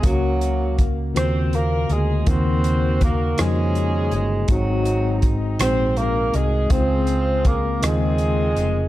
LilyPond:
<<
  \new Staff \with { instrumentName = "Saxophone section" } { \time 6/8 \key des \major \tempo 4. = 54 << { ges'4 r8 c''8 bes'8 aes'8 | c''4 bes'8 aes'4. | ges'4 r8 c''8 bes'8 aes'8 | c''4 bes'8 aes'4. | } \\ { bes4. r4. | ges'4. des'4. | <c' ees'>4. r4. | <f' aes'>4. <c' f'>4. | } >> }
  \new Staff \with { instrumentName = "Tine electric piano" } { \time 6/8 \key des \major <bes des' ges' bes' f''>4 r8 <des bes f' ges' c''>4 r8 | <des bes ees' f' ges' bes'>4 r8 <bes des' ees' f' ges' c''>4 r8 | <aes c' ees' ges' aes'>4 r8 <aes c' ees' ges' aes'>4 r8 | <aes c' ees' f' aes'>4 r8 <des aes c' ees' f' bes'>4 r8 | }
  \new Staff \with { instrumentName = "Tine electric piano" } { \clef bass \time 6/8 \key des \major des4. r4. | ees4. r4. | aes,4. r4. | des4. r4. | }
  \new Staff \with { instrumentName = "Tenor saxophone" } { \time 6/8 \key des \major ges4 r8 c'8 bes8 aes8 | c'4 bes8 aes4 aes8 | ges4 r8 c'8 bes8 aes8 | c'4 bes8 aes4. | }
  \new Staff \with { instrumentName = "Fingered electric bass" } { \clef bass \time 6/8 \key des \major des,4. ees,4 d,8 | ees,4. f,4 g,,8 | aes,,4. bes,,4 c,8 | des,4. ees,4 f,,8 | }
  \new DrumStaff \with { instrumentName = "Drums" } \drummode { \time 6/8 <hh bd>8 hh8 <hh bd>8 <hh ss>8 hh8 hh8 | <hh bd>8 hh8 <hh bd ss>8 <hh ss>8 hh8 hh8 | <hh bd>8 hh8 <hh bd>8 <hh ss>8 hh8 hh8 | <hh bd>8 hh8 <hh bd>8 <hh ss>8 hh8 hh8 | }
>>